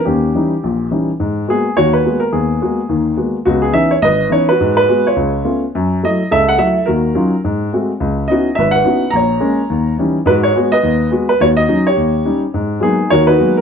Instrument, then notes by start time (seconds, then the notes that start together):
grand piano
0.05 D#2 C#4 G4
0.35 E3 G3 C#4 D#4
0.63 A#1 A#2
0.91 E3 G3 C#4 D#4
1.20 G#2
1.48 G#3 A#3 B3 F#4 G#4
1.77 D#2 D#3 F#4 C#5
1.93 B4
2.04 G#3 A#3 B3 F#4
2.20 A#4
2.32 D#2 B3 G#4
2.62 G#3 A#3 B3 F#4
2.89 D#2 D#3
3.17 G#3 A#3 B3 F#4
3.45 C#2 B3 F#4
3.62 G#4
3.73 E3 B3 C#4 D#4 E5
3.91 C#5
4.02 G#1 B4 D#5
4.30 E3 B3 C#4 D#4 C#5
4.49 F#4 B4
4.60 G#2
4.77 B4
4.89 G#3 B3 F#4
5.07 F4 C#5
5.16 C#2
5.44 A3 B3 C#4 F4
5.75 F#2
6.03 F#3 A3 E4 D#5
6.31 C#2 A4 E5
6.48 F#5
6.58 F#3 A3 E4 E5
6.86 D#2 F#4 A#4
7.15 F#3 C#4 D#4 F4
7.44 G#2
7.73 G#3 A3 C4 F#4
8.00 C#2
8.28 B3 C#4 D#4 E4 F#4 D#5
8.55 G#1 E5
8.60 B4
8.71 B4 F#5
8.84 B3 C#4 D#4 E4 F#4
9.10 A#1 A#5
9.16 C#5
9.40 G#3 A#3 C#4
9.70 D#2
9.98 E3 G3 C#4 D#4
10.26 G#2 F#4 B4
10.43 C#5
10.55 G#3 B3 F#4
10.72 B4 D#5
10.83 D#2
11.11 G#3 B3 F#4
11.29 B4
11.40 D#2 F#4 C#5
11.57 D#5
11.68 F#3 C#4 D#4
11.87 G4 C#5
11.97 D#2
12.25 G3 C#4 D#4
12.54 G#2
12.80 F#3 G#3 A#3 B3 D#4 G#4
13.10 D#2 D#3 F#4 A#4 C#5
13.27 D#4 F#4 B4
13.39 F#3 G#3 A#3 B3
13.57 A#4